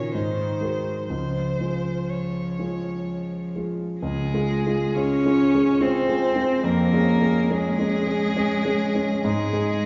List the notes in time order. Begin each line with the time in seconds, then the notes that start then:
Already playing: A#2 D#3 C#4 F#4 A#4 C#5
0.15 G#2 C5
0.61 G#3 F#4 A#4
1.09 C#2 F3 C5
1.60 G#3 F4 G#4
2.09 C#5
2.59 G#3 F4 G#4
3.56 G#3 F4 G#4
4.00 C#2 G#3 G#4
4.34 G#3 F4 G#4
4.67 G#3 F4 G#4
4.95 G#3 C#4 F4 G#4 C#5
5.26 G#3 F4 G#4
5.55 G#3 F4 G#4
5.81 G#3 C4 F4 G#4 C5
6.09 G#3 F4 G#4
6.36 G#3 F4 G#4
6.63 F2 A#3 A#4
6.93 G#3 C#4 G#4
7.21 G#3 C#4 G#4
7.50 G#3 C#4 G#4
7.79 G#3 C#4 G#4
8.06 G#3 C#4 G#4
8.36 G#3 C#4 G#4
8.65 G#3 C#4 G#4
8.95 G#3 C#4 G#4
9.22 G#2 G#3 G#4
9.53 G#3 D#4 G#4